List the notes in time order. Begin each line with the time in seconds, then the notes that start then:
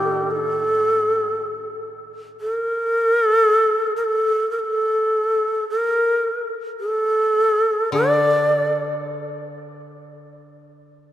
Already playing: A2 D#3 A3 A#3 D#4 G4
0.31 A4
2.41 A#4
3.29 A4
3.96 A#4
4.05 A4
4.51 A#4
4.60 A4
5.70 A#4
6.80 A4
7.92 D3 D5